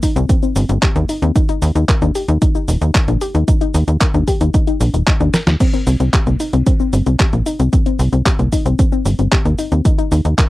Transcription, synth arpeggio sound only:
0.03 D#4
0.16 C4
0.29 C4
0.43 C4
0.56 C4
0.69 C4
0.83 G4
0.96 A#3
1.09 D#4
1.22 C4
1.36 D#4
1.49 D#4
1.62 D#4
1.76 D#4
1.89 A#4
2.02 D4
2.15 G4
2.29 D#4
2.42 D#4
2.55 D#4
2.68 D#4
2.82 D#4
2.95 A#4
3.08 D4
3.21 G4
3.35 D#4
3.48 D#4
3.61 D#4
3.74 D#4
3.88 D#4
4.01 A#4
4.14 D4
4.28 G4
4.41 D#4
4.54 D#4
4.67 D#4
4.81 D4
4.94 D#4
5.07 D#5
5.21 D4
5.34 A#4
5.47 F4
5.60 C4
5.74 C4
5.87 C4
6.00 C4
6.13 G4
6.27 A#3
6.40 D#4
6.53 C4
6.66 C4
6.80 C4
6.93 C4
7.06 C4
7.20 G4
7.33 A#3
7.46 D#4
7.59 C4
7.73 C4
7.86 C4
7.99 C4
8.13 C4
8.26 G4
8.39 A#3
8.52 D#4
8.66 C4
8.79 C4
8.92 C4
9.05 C4
9.19 C4
9.32 G4
9.45 A#3
9.59 D#4
9.72 C4
9.85 D#4
9.98 D#4
10.12 D#4
10.25 D#4
10.38 A#4

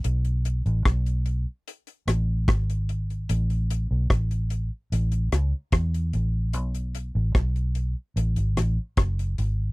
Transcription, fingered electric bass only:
0.05 B1
0.66 A1
0.86 B1
2.07 A1
2.48 G#1
3.30 A1
3.91 B1
4.10 A1
4.92 A1
5.32 C#2
5.73 E2
6.14 A1
6.54 B1
7.15 A1
7.35 B1
8.16 A1
8.37 G#1
8.57 A1
8.98 F#1
9.38 G#1

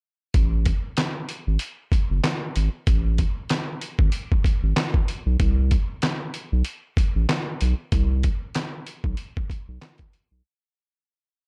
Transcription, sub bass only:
0.35 A1
1.47 G#1
2.10 F#1
2.56 G#1
2.87 A1
3.99 G#1
4.63 G#1
5.26 B1
5.40 C2
6.52 B1
7.16 A1
7.62 B1
7.93 C2
9.04 B1
9.68 B1
10.31 B1

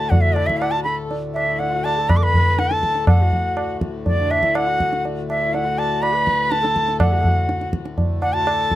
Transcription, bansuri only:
Already playing: A5
0.10 F#5
0.21 E5
0.33 D5
0.46 E5
0.57 F#5
0.71 A5
0.84 B5
1.34 E5
1.59 F#5
1.84 A5
2.09 B5
2.17 D6
2.24 B5
2.59 A5
3.08 F#5
4.07 D5
4.31 E5
4.56 F#5
5.30 E5
5.54 F#5
5.78 A5
6.02 B5
6.51 A5
7.00 F#5
8.22 F#5
8.34 A5

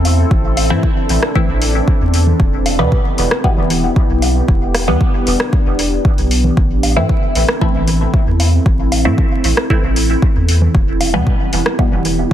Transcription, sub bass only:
Already playing: E2
0.31 A1
0.70 A2
1.09 A1
1.49 A1
2.01 E2
2.40 E1
2.79 E2
3.18 E1
3.57 E1
4.09 B1
4.49 E1
4.88 E2
5.27 E1
5.66 E1
6.18 B1
6.57 A1
6.96 A2
7.35 A1
7.75 A1
8.27 E2
8.66 A1
9.05 A2
9.44 A1
9.83 A1
10.36 E2
10.75 E1
11.14 E2
11.53 E1
11.92 E1

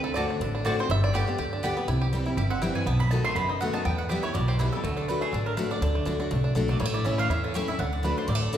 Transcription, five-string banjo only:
0.04 A4
0.14 D5
0.30 D4
0.42 D4
0.55 D4
0.66 D4
0.80 C5
0.91 E5
1.04 D5
1.15 G4
1.28 D4
1.39 G4
1.53 D4
1.64 G4
1.77 B3
1.88 E4
2.02 G4
2.13 G3
2.26 E4
2.37 G4
2.50 C4
2.62 E4
2.75 E3
2.86 B3
2.99 A3
3.11 D#4
3.24 A3
3.36 B3
3.49 D#4
3.61 A3
3.74 D#4
3.85 B3
4.10 G4
4.23 E4
4.34 G3
4.48 G4
4.60 E4
4.73 G3
4.84 A3
4.97 D4
5.08 D4
5.21 A3
5.33 D4
5.46 D4
5.57 D4
5.71 D4
5.82 D4
5.95 A3
6.06 D4
6.20 D4
6.31 A3
6.44 D4
6.55 D4
6.69 A3
6.80 G3
6.85 A3
6.94 E4
7.05 C#4
7.18 A3
7.30 E4
7.44 C#4
7.55 G4
7.69 E4
7.80 D4
8.04 D4
8.18 D4
8.30 G3
8.35 A3
8.43 D4
8.54 D4

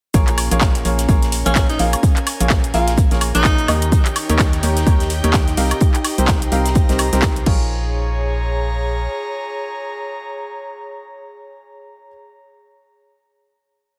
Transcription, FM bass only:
0.14 A#1
0.51 A#1
0.85 A#1
1.09 A#1
1.46 A#1
1.79 A#1
2.40 A#1
2.74 A#1
3.11 A#1
3.35 A#1
3.68 D#2
4.29 D#2
4.63 D#2
4.87 D#2
5.24 D#2
5.57 C2
6.18 C2
6.52 C2
6.89 C2
7.13 C2
7.46 A#1

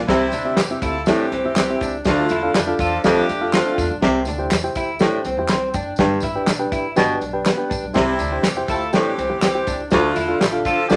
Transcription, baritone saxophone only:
0.09 C3
1.08 A2
2.06 D2
3.05 F2
4.02 C3
5.00 A2
5.99 G2
6.97 B2
7.95 C3
8.94 A2
9.93 D2
10.91 F2

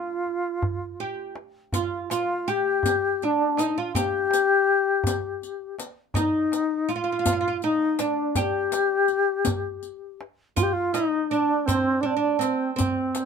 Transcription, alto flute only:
Already playing: F4
1.75 F4
2.11 F4
2.50 G4
3.25 D4
3.60 D#4
3.78 F4
3.96 G4
6.16 D#4
6.92 F4
7.65 D#4
8.00 D4
8.39 G4
10.59 F4 G4
10.73 F4
10.93 D#4
11.30 D4
11.66 C4
12.01 D4
12.05 C4
12.16 D4
12.39 C4
12.75 C4

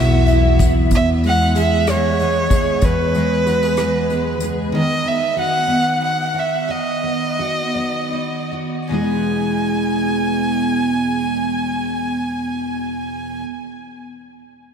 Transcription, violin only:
Already playing: E5
0.95 E5
1.27 F#5
1.59 E5
1.91 C#5
2.84 B4
4.77 D#5
5.07 E5
5.39 F#5
6.04 F#5
6.39 E5
6.71 D#5
8.93 G#5

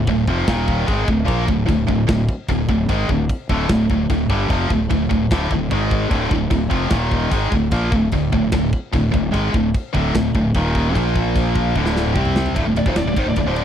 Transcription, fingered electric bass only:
0.08 D1
0.27 F1
0.48 D#1
0.88 G#1
1.08 D1
1.28 A#1
1.48 D1
1.68 D1
1.89 D1
2.08 D1
2.49 D1
2.69 D1
2.89 G#1
3.09 D1
3.50 D1
3.70 D1
3.90 D1
4.10 D1
4.29 G1
4.50 F1
4.71 D1
4.91 D1
5.11 D1
5.31 D1
5.51 D1
5.71 G#1
6.10 D1
6.32 D1
6.51 D1
6.71 F1
6.91 D#1
7.32 G#1
7.52 D1
7.72 A#1
7.92 D1
8.13 D1
8.33 D1
8.52 D1
8.93 D1
9.14 D1
9.34 G#1
9.54 D1
9.95 D1
10.15 D1
10.34 D1
10.55 D#1
10.95 A#1
11.76 D1
12.16 C2
12.56 D1
12.65 D1
12.76 D1
12.86 D#1
12.95 D1
13.05 D1
13.17 G#1
13.26 D1
13.37 D1
13.45 D1

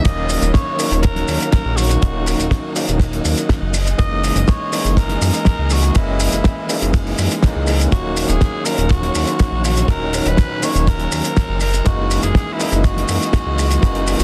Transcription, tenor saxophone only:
0.04 D#5
0.53 C#5
1.02 A#4
1.51 A#4
1.77 F#4
3.98 D#5
4.48 C#5
4.98 A#4
5.73 F#4
5.96 E4
7.92 F#4
8.29 G#4
8.65 A#4
8.91 F#4
9.65 F#4
9.90 A#4
10.27 B4
10.63 C#5
10.88 A#4
11.61 A#4
11.86 F#4
12.23 G#4
12.53 E4
12.85 F#4

